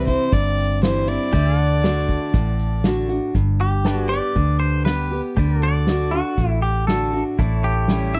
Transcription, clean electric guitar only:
0, 0, Header, 1, 2, 480
1, 0, Start_track
1, 0, Key_signature, 1, "major"
1, 0, Tempo, 504202
1, 1268, Time_signature, 4, 2, 24, 8
1, 7804, End_track
2, 0, Start_track
2, 0, Title_t, "Clean electric guitar"
2, 0, Program_c, 0, 27
2, 3435, Note_on_c, 0, 67, 82
2, 3768, Note_off_c, 0, 67, 0
2, 3768, Note_on_c, 0, 66, 82
2, 3879, Note_off_c, 0, 66, 0
2, 3894, Note_on_c, 0, 74, 102
2, 4348, Note_off_c, 0, 74, 0
2, 4375, Note_on_c, 0, 72, 87
2, 4614, Note_off_c, 0, 72, 0
2, 4618, Note_on_c, 0, 71, 70
2, 4958, Note_off_c, 0, 71, 0
2, 5363, Note_on_c, 0, 74, 96
2, 5819, Note_on_c, 0, 66, 87
2, 5851, Note_off_c, 0, 74, 0
2, 6271, Note_off_c, 0, 66, 0
2, 6305, Note_on_c, 0, 67, 79
2, 6531, Note_off_c, 0, 67, 0
2, 6542, Note_on_c, 0, 69, 67
2, 6881, Note_off_c, 0, 69, 0
2, 7275, Note_on_c, 0, 67, 81
2, 7755, Note_on_c, 0, 76, 95
2, 7768, Note_off_c, 0, 67, 0
2, 7804, Note_off_c, 0, 76, 0
2, 7804, End_track
0, 0, End_of_file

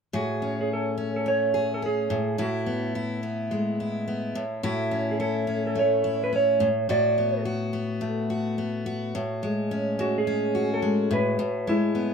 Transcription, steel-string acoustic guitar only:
0, 0, Header, 1, 2, 480
1, 0, Start_track
1, 0, Key_signature, 3, "major"
1, 0, Tempo, 562852
1, 113, Time_signature, 4, 2, 24, 8
1, 10351, End_track
2, 0, Start_track
2, 0, Title_t, "Steel-string acoustic guitar"
2, 0, Program_c, 0, 25
2, 114, Note_on_c, 0, 45, 68
2, 118, Note_on_c, 0, 68, 58
2, 358, Note_on_c, 0, 61, 44
2, 822, Note_off_c, 0, 61, 0
2, 832, Note_on_c, 0, 61, 47
2, 1073, Note_on_c, 0, 57, 50
2, 1099, Note_off_c, 0, 68, 0
2, 1313, Note_on_c, 0, 68, 50
2, 1545, Note_off_c, 0, 61, 0
2, 1555, Note_on_c, 0, 61, 44
2, 1781, Note_off_c, 0, 45, 0
2, 1792, Note_on_c, 0, 45, 67
2, 1850, Note_off_c, 0, 57, 0
2, 1852, Note_off_c, 0, 61, 0
2, 2022, Note_off_c, 0, 45, 0
2, 2032, Note_on_c, 0, 45, 71
2, 2035, Note_off_c, 0, 68, 0
2, 2038, Note_on_c, 0, 64, 62
2, 2272, Note_on_c, 0, 59, 44
2, 2514, Note_off_c, 0, 64, 0
2, 2517, Note_on_c, 0, 64, 51
2, 2743, Note_off_c, 0, 59, 0
2, 2753, Note_on_c, 0, 59, 46
2, 2994, Note_on_c, 0, 56, 44
2, 3238, Note_off_c, 0, 64, 0
2, 3241, Note_on_c, 0, 64, 52
2, 3465, Note_off_c, 0, 59, 0
2, 3475, Note_on_c, 0, 59, 45
2, 3703, Note_off_c, 0, 45, 0
2, 3713, Note_on_c, 0, 45, 63
2, 3771, Note_off_c, 0, 56, 0
2, 3771, Note_off_c, 0, 59, 0
2, 3941, Note_off_c, 0, 45, 0
2, 3951, Note_on_c, 0, 45, 77
2, 3952, Note_off_c, 0, 64, 0
2, 3955, Note_on_c, 0, 64, 65
2, 4190, Note_on_c, 0, 61, 45
2, 4422, Note_off_c, 0, 64, 0
2, 4432, Note_on_c, 0, 64, 52
2, 4655, Note_off_c, 0, 61, 0
2, 4665, Note_on_c, 0, 61, 47
2, 4907, Note_on_c, 0, 57, 48
2, 5140, Note_off_c, 0, 64, 0
2, 5150, Note_on_c, 0, 64, 53
2, 5384, Note_off_c, 0, 61, 0
2, 5395, Note_on_c, 0, 61, 52
2, 5620, Note_off_c, 0, 45, 0
2, 5630, Note_on_c, 0, 45, 68
2, 5687, Note_off_c, 0, 57, 0
2, 5689, Note_off_c, 0, 64, 0
2, 5691, Note_off_c, 0, 61, 0
2, 5866, Note_off_c, 0, 45, 0
2, 5876, Note_on_c, 0, 45, 75
2, 5883, Note_on_c, 0, 66, 61
2, 6122, Note_on_c, 0, 59, 47
2, 6353, Note_off_c, 0, 66, 0
2, 6356, Note_on_c, 0, 66, 52
2, 6582, Note_off_c, 0, 59, 0
2, 6592, Note_on_c, 0, 59, 51
2, 6830, Note_on_c, 0, 57, 52
2, 7074, Note_off_c, 0, 66, 0
2, 7078, Note_on_c, 0, 66, 55
2, 7307, Note_off_c, 0, 59, 0
2, 7317, Note_on_c, 0, 59, 50
2, 7553, Note_off_c, 0, 66, 0
2, 7556, Note_on_c, 0, 66, 57
2, 7792, Note_off_c, 0, 45, 0
2, 7802, Note_on_c, 0, 45, 79
2, 7849, Note_off_c, 0, 57, 0
2, 7852, Note_off_c, 0, 59, 0
2, 8040, Note_on_c, 0, 56, 53
2, 8066, Note_off_c, 0, 66, 0
2, 8282, Note_on_c, 0, 61, 55
2, 8515, Note_off_c, 0, 56, 0
2, 8519, Note_on_c, 0, 56, 58
2, 8749, Note_off_c, 0, 61, 0
2, 8759, Note_on_c, 0, 61, 56
2, 8995, Note_on_c, 0, 66, 56
2, 9227, Note_off_c, 0, 56, 0
2, 9230, Note_on_c, 0, 56, 46
2, 9461, Note_off_c, 0, 45, 0
2, 9471, Note_on_c, 0, 45, 66
2, 9534, Note_off_c, 0, 61, 0
2, 9702, Note_off_c, 0, 45, 0
2, 9712, Note_on_c, 0, 45, 75
2, 9738, Note_off_c, 0, 56, 0
2, 9955, Note_on_c, 0, 56, 50
2, 9981, Note_off_c, 0, 66, 0
2, 10190, Note_on_c, 0, 59, 46
2, 10351, Note_off_c, 0, 45, 0
2, 10351, Note_off_c, 0, 56, 0
2, 10351, Note_off_c, 0, 59, 0
2, 10351, End_track
0, 0, End_of_file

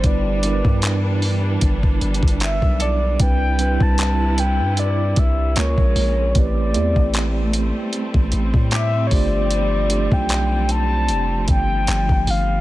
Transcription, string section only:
0, 0, Header, 1, 2, 480
1, 0, Start_track
1, 0, Key_signature, 0, "major"
1, 0, Tempo, 789474
1, 22, Time_signature, 4, 2, 24, 8
1, 7665, End_track
2, 0, Start_track
2, 0, Title_t, "String section"
2, 0, Program_c, 0, 48
2, 0, Note_on_c, 0, 55, 74
2, 26, Note_on_c, 0, 52, 80
2, 26, Note_on_c, 0, 62, 91
2, 1925, Note_off_c, 0, 52, 0
2, 1925, Note_off_c, 0, 62, 0
2, 1944, Note_on_c, 0, 48, 83
2, 1944, Note_on_c, 0, 64, 85
2, 1945, Note_on_c, 0, 71, 72
2, 3358, Note_off_c, 0, 55, 0
2, 3369, Note_off_c, 0, 48, 0
2, 3369, Note_off_c, 0, 64, 0
2, 3369, Note_off_c, 0, 71, 0
2, 3382, Note_on_c, 0, 56, 69
2, 3383, Note_on_c, 0, 49, 72
2, 3383, Note_on_c, 0, 58, 79
2, 3857, Note_off_c, 0, 56, 0
2, 3858, Note_off_c, 0, 49, 0
2, 3858, Note_off_c, 0, 58, 0
2, 3861, Note_on_c, 0, 57, 91
2, 3862, Note_on_c, 0, 55, 73
2, 3863, Note_on_c, 0, 60, 80
2, 5525, Note_off_c, 0, 57, 0
2, 5543, Note_on_c, 0, 53, 73
2, 6493, Note_off_c, 0, 53, 0
2, 6500, Note_on_c, 0, 53, 74
2, 7665, Note_off_c, 0, 53, 0
2, 7665, Note_off_c, 0, 55, 0
2, 7665, Note_off_c, 0, 60, 0
2, 7665, End_track
0, 0, End_of_file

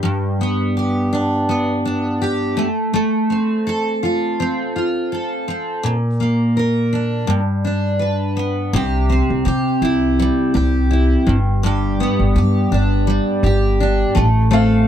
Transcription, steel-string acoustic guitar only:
0, 0, Header, 1, 2, 480
1, 0, Start_track
1, 0, Key_signature, 0, "major"
1, 0, Tempo, 724638
1, 26, Time_signature, 4, 2, 24, 8
1, 9854, End_track
2, 0, Start_track
2, 0, Title_t, "Steel-string acoustic guitar"
2, 0, Program_c, 0, 25
2, 0, Note_on_c, 0, 67, 58
2, 18, Note_on_c, 0, 43, 70
2, 270, Note_on_c, 0, 59, 52
2, 506, Note_off_c, 0, 67, 0
2, 509, Note_on_c, 0, 67, 56
2, 746, Note_on_c, 0, 62, 52
2, 978, Note_off_c, 0, 59, 0
2, 986, Note_on_c, 0, 59, 52
2, 1220, Note_off_c, 0, 62, 0
2, 1228, Note_on_c, 0, 62, 51
2, 1459, Note_off_c, 0, 67, 0
2, 1467, Note_on_c, 0, 67, 57
2, 1700, Note_on_c, 0, 57, 68
2, 1756, Note_off_c, 0, 43, 0
2, 1760, Note_off_c, 0, 59, 0
2, 1760, Note_off_c, 0, 67, 0
2, 1761, Note_off_c, 0, 62, 0
2, 1936, Note_off_c, 0, 57, 0
2, 1944, Note_on_c, 0, 57, 77
2, 2186, Note_on_c, 0, 60, 51
2, 2429, Note_on_c, 0, 69, 59
2, 2668, Note_on_c, 0, 65, 55
2, 2905, Note_off_c, 0, 60, 0
2, 2913, Note_on_c, 0, 60, 56
2, 3149, Note_off_c, 0, 65, 0
2, 3151, Note_on_c, 0, 65, 48
2, 3384, Note_off_c, 0, 69, 0
2, 3392, Note_on_c, 0, 69, 53
2, 3622, Note_off_c, 0, 60, 0
2, 3629, Note_on_c, 0, 60, 51
2, 3864, Note_on_c, 0, 46, 73
2, 3867, Note_off_c, 0, 57, 0
2, 3922, Note_off_c, 0, 60, 0
2, 3923, Note_off_c, 0, 65, 0
2, 3924, Note_off_c, 0, 69, 0
2, 4107, Note_on_c, 0, 58, 49
2, 4350, Note_on_c, 0, 70, 54
2, 4588, Note_on_c, 0, 62, 53
2, 4815, Note_off_c, 0, 46, 0
2, 4817, Note_on_c, 0, 43, 71
2, 4881, Note_off_c, 0, 58, 0
2, 4882, Note_off_c, 0, 62, 0
2, 4883, Note_off_c, 0, 70, 0
2, 5064, Note_on_c, 0, 62, 50
2, 5295, Note_on_c, 0, 71, 54
2, 5542, Note_on_c, 0, 59, 49
2, 5785, Note_on_c, 0, 48, 76
2, 5788, Note_off_c, 0, 71, 0
2, 5791, Note_on_c, 0, 67, 56
2, 5836, Note_off_c, 0, 43, 0
2, 5838, Note_off_c, 0, 59, 0
2, 5840, Note_off_c, 0, 62, 0
2, 6024, Note_on_c, 0, 60, 51
2, 6257, Note_off_c, 0, 67, 0
2, 6260, Note_on_c, 0, 67, 60
2, 6504, Note_on_c, 0, 64, 59
2, 6753, Note_on_c, 0, 55, 65
2, 6979, Note_off_c, 0, 67, 0
2, 6981, Note_on_c, 0, 67, 56
2, 7216, Note_off_c, 0, 64, 0
2, 7224, Note_on_c, 0, 64, 53
2, 7462, Note_on_c, 0, 43, 64
2, 7519, Note_off_c, 0, 60, 0
2, 7519, Note_off_c, 0, 64, 0
2, 7520, Note_off_c, 0, 48, 0
2, 7699, Note_off_c, 0, 43, 0
2, 7705, Note_on_c, 0, 43, 73
2, 7709, Note_off_c, 0, 67, 0
2, 7712, Note_on_c, 0, 67, 64
2, 7950, Note_on_c, 0, 59, 53
2, 8177, Note_off_c, 0, 67, 0
2, 8185, Note_on_c, 0, 67, 60
2, 8425, Note_on_c, 0, 62, 62
2, 8656, Note_off_c, 0, 55, 0
2, 8658, Note_on_c, 0, 55, 69
2, 8893, Note_off_c, 0, 67, 0
2, 8901, Note_on_c, 0, 67, 57
2, 9136, Note_off_c, 0, 62, 0
2, 9144, Note_on_c, 0, 62, 54
2, 9369, Note_off_c, 0, 55, 0
2, 9371, Note_on_c, 0, 57, 70
2, 9435, Note_off_c, 0, 67, 0
2, 9437, Note_off_c, 0, 43, 0
2, 9437, Note_off_c, 0, 62, 0
2, 9439, Note_off_c, 0, 59, 0
2, 9602, Note_off_c, 0, 57, 0
2, 9609, Note_on_c, 0, 57, 75
2, 9614, Note_on_c, 0, 69, 58
2, 9854, Note_off_c, 0, 57, 0
2, 9854, Note_off_c, 0, 69, 0
2, 9854, End_track
0, 0, End_of_file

